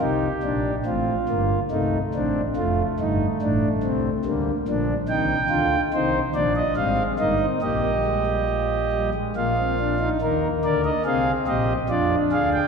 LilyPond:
<<
  \new Staff \with { instrumentName = "Pipe organ" } { \time 3/4 \key c \minor \tempo 4 = 71 << { r2. | r2. | \key ees \major g''4 c''8 d''16 ees''16 f''8 ees''8 | ees''2 f''4 |
bes'8 d''16 ees''16 f''8 ees''8 d''8 f''16 g''16 | } \\ { g'4 f'4 ees'8 d'8 | f'8 ees'8 d'8 c'8 bes8 d'8 | ees'8 f'8 ees'8 d'8 c'8 ees'8 | g'2 f'4 |
ees'8 bes'8 aes'8 g'8 f'8 aes'8 | } >> }
  \new Staff \with { instrumentName = "Pipe organ" } { \clef bass \time 3/4 \key c \minor << { ees'8 d'8 c'8 bes8 a8 c'8 | a2 g8 f8 | \key ees \major ees8 d8 ees8 f8 g16 aes16 bes16 c'16 | bes8 aes16 g16 f8 g16 aes16 bes16 c'16 d'16 ees'16 |
bes4 c'4 d'4 | } \\ { <c, c>8 <bes,, bes,>8 <a,, a,>8 <g,, g,>8 <c, c>8 <a,, a,>8 | <f,, f,>8 <g,, g,>8 <a,, a,>8 <c, c>8 <d, d>8 <bes,, bes,>8 | <c, c>8 d,8 <c, c>8 <bes,, bes,>8 <aes,, aes,>8 <g,, g,>8 | <bes,, bes,>2 <bes,, bes,>4 |
<ees, ees>8 <d, d>8 <c, c>8 <bes,, bes,>8 <f, f>8 <d, d>8 | } >> }
>>